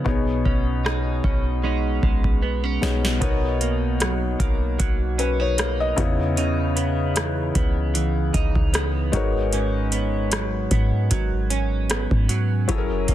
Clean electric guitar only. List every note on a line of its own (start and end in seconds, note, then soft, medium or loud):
0.00 0.14 F3 medium
0.00 0.45 B3 medium
0.00 0.48 D#4 medium
0.06 3.20 B2 medium
0.45 1.23 C#4 medium
0.85 1.64 D#4 medium
1.24 1.63 C#4 medium
1.64 2.02 G#3 medium
1.64 2.42 C#4 medium
1.64 3.21 D#4 medium
2.03 3.30 G#3 medium
2.42 2.64 B3 medium
2.64 3.30 C#4 medium
3.21 5.97 B2 medium
3.21 5.18 D#4 medium
3.61 4.38 A#3 medium
4.00 4.78 F#3 medium
4.40 5.57 A#3 medium
4.79 6.06 F#3 medium
5.18 5.40 C#4 medium
5.40 6.06 D#4 medium
5.58 6.06 A#3 medium
5.97 6.36 C#3 medium
6.37 9.22 C#3 medium
6.37 8.33 D#4 medium
6.76 7.55 B3 medium
7.16 7.93 E3 medium
7.55 8.73 B3 medium
7.95 9.22 E3 medium
8.34 9.53 D#4 medium
8.73 9.56 B3 medium
9.13 9.52 G#2 medium
9.53 12.68 G#2 medium
9.53 11.50 C#4 medium
9.92 10.70 B3 medium
10.32 11.10 F#3 medium
10.71 11.89 B3 medium
11.11 12.29 F#3 medium
11.50 12.69 C#4 medium
11.90 12.77 B3 medium
12.29 13.14 F#3 medium
12.69 13.14 F#2 medium
12.69 13.14 C#4 medium
13.08 13.14 A#3 medium